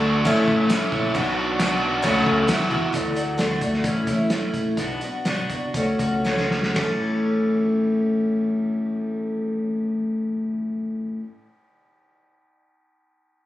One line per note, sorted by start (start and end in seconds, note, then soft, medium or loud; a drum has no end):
0.00 0.22 D2 loud
0.00 0.25 D3 medium
0.00 0.24 A3 medium
0.00 0.25 D4 medium
0.00 0.26 D4 medium
0.00 0.25 F#4 medium
0.00 0.26 F#4 medium
0.00 0.24 F#4 medium
0.00 0.25 A4 medium
0.00 0.25 D5 medium
0.04 0.25 A3 medium
0.04 0.25 D4 medium
0.25 0.36 A1 loud
0.25 0.70 A2 medium
0.25 0.68 E3 loud
0.25 0.69 A3 loud
0.25 1.14 C#4 medium
0.25 0.70 C#4 loud
0.25 1.14 E4 medium
0.25 0.71 E4 loud
0.25 1.14 A4 medium
0.25 1.14 C#5 medium
0.25 kick loud
0.25 crash medium
0.48 0.89 A1 medium
0.48 kick medium
0.69 0.92 E3 medium
0.69 0.92 A3 medium
0.69 0.92 C#4 medium
0.69 0.91 E4 medium
0.69 snare loud
0.69 tambourine loud
0.69 crash medium
0.92 1.13 A#1 loud
0.92 1.15 A3 soft
0.92 1.15 C#4 medium
0.92 1.15 E4 medium
0.92 kick medium
1.14 2.00 B1 loud
1.14 1.59 B2 medium
1.14 1.59 F#3 medium
1.14 1.59 B3 medium
1.14 2.03 D4 medium
1.14 1.60 D4 medium
1.14 2.03 F#4 medium
1.14 1.60 F#4 loud
1.14 2.03 B4 medium
1.14 2.03 D5 medium
1.14 kick loud
1.14 crash medium
1.37 1.59 B3 medium
1.37 1.60 D4 medium
1.37 1.61 F#4 medium
1.59 2.03 B2 loud
1.59 2.02 F#3 medium
1.59 2.03 B3 medium
1.59 2.03 D4 medium
1.59 2.03 F#4 medium
1.59 snare loud
1.59 tambourine loud
1.59 crash medium
1.81 2.04 B3 medium
1.81 2.03 D4 medium
1.81 2.03 F#4 medium
2.02 2.25 C#2 loud
2.02 2.48 C#3 loud
2.02 2.47 F#3 loud
2.02 2.48 A3 loud
2.02 2.49 C#4 medium
2.02 2.49 F#4 loud
2.02 2.49 F#4 medium
2.02 2.49 A4 medium
2.02 2.49 C#5 medium
2.02 kick loud
2.02 crash medium
2.26 2.47 C#2 medium
2.26 kick medium
2.47 2.92 E2 loud
2.47 2.70 E2 loud
2.47 2.92 B2 loud
2.47 2.71 E3 medium
2.47 2.71 B3 medium
2.47 2.70 E4 medium
2.47 2.94 E4 medium
2.47 2.69 F#4 medium
2.47 2.94 F#4 medium
2.47 2.94 B4 medium
2.47 2.94 E5 medium
2.47 snare loud
2.47 tambourine medium
2.47 crash medium
2.70 2.92 E2 medium
2.70 2.92 E3 soft
2.70 2.93 B3 medium
2.70 2.94 E4 medium
2.70 2.93 F#4 medium
2.70 kick medium
2.93 3.58 D2 medium
2.93 3.16 D3 medium
2.93 3.16 A3 medium
2.93 3.14 D4 medium
2.93 3.14 F#4 medium
2.93 kick medium
2.93 closed hi-hat medium
3.15 3.37 A3 soft
3.15 3.38 D4 medium
3.15 3.38 F#4 soft
3.15 closed hi-hat soft
3.38 3.61 D3 medium
3.38 3.61 A3 medium
3.38 3.61 D4 medium
3.38 3.60 F#4 loud
3.38 snare medium
3.38 closed hi-hat medium
3.61 3.82 D2 medium
3.61 3.83 A3 soft
3.61 3.85 D4 soft
3.61 3.84 F#4 medium
3.61 kick medium
3.61 closed hi-hat medium
3.73 snare soft
3.84 4.05 A1 medium
3.84 4.07 E3 medium
3.84 4.07 A3 medium
3.84 4.08 C#4 medium
3.84 4.06 E4 medium
3.84 kick medium
3.84 closed hi-hat medium
4.07 4.50 E2 medium
4.07 4.30 A3 soft
4.07 4.31 C#4 medium
4.07 4.30 E4 medium
4.07 kick medium
4.07 closed hi-hat medium
4.30 4.77 A2 medium
4.30 4.78 E3 medium
4.30 4.78 A3 medium
4.30 4.78 C#4 medium
4.30 4.78 E4 medium
4.30 snare loud
4.30 closed hi-hat medium
4.54 4.76 A#1 medium
4.54 kick medium
4.54 closed hi-hat medium
4.77 4.99 B1 medium
4.77 5.01 B2 medium
4.77 5.02 F#3 medium
4.77 5.02 B3 medium
4.77 5.02 D4 medium
4.77 5.01 F#4 medium
4.77 kick medium
4.77 closed hi-hat medium
5.01 5.26 B3 soft
5.01 5.25 D4 soft
5.01 5.26 F#4 soft
5.01 closed hi-hat soft
5.25 5.50 B2 medium
5.25 5.50 F#3 medium
5.25 5.50 B3 medium
5.25 5.50 D4 medium
5.25 5.48 F#4 medium
5.25 snare medium
5.25 closed hi-hat medium
5.49 5.61 C2 medium
5.49 5.75 B3 soft
5.49 5.75 D4 soft
5.49 5.74 F#4 soft
5.49 kick medium
5.49 closed hi-hat soft
5.74 5.98 C#2 medium
5.74 5.99 F#3 soft
5.74 6.00 A3 medium
5.74 5.99 C#4 medium
5.74 5.98 F#4 medium
5.74 kick medium
5.74 closed hi-hat medium
5.99 6.73 C#2 medium
5.99 6.24 A3 soft
5.99 6.25 C#4 soft
5.99 6.25 F#4 medium
5.99 kick medium
5.99 closed hi-hat medium
6.24 6.74 C#3 medium
6.24 6.77 F#3 medium
6.24 6.78 A3 medium
6.24 6.78 C#4 medium
6.24 6.78 F#4 medium
6.24 snare medium
6.38 snare medium
6.51 snare medium
6.63 snare medium
6.75 11.17 A1 medium
6.75 11.18 A2 medium
6.75 11.21 E3 medium
6.75 snare medium
6.75 floor tom medium
6.75 ride bell medium
6.80 11.23 A3 medium
6.80 11.24 C#4 medium
6.84 11.27 A4 medium